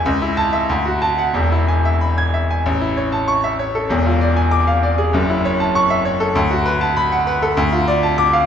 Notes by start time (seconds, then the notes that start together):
0.06 C#2
0.22 E4
0.37 A5
0.53 E5
0.69 D2
0.85 F#4
1.02 A5
1.18 F#5
1.34 E1 E2
1.52 E4
1.68 G#5
1.85 E5
2.01 B5
2.18 G#6
2.34 E5
2.50 G#5
2.66 A1
2.81 E4
2.97 C#5
3.12 A5
3.28 C#6
3.44 E5
3.59 C#5
3.75 A4
3.89 E1 E2
4.06 F4
4.21 D5
4.36 G#5
4.51 D6
4.67 F5
4.83 D5
4.98 G#4
5.13 F#1 F#2
5.30 E4
5.45 C#5
5.60 A5
5.75 C#6
5.90 E5
6.05 C#5
6.20 A4
6.35 D2
6.50 F#4
6.65 B4
6.81 A5
6.97 B5
7.12 F#5
7.27 B4
7.42 A4
7.57 D2
7.73 F4
7.88 D5
8.03 A5
8.18 D6
8.33 F5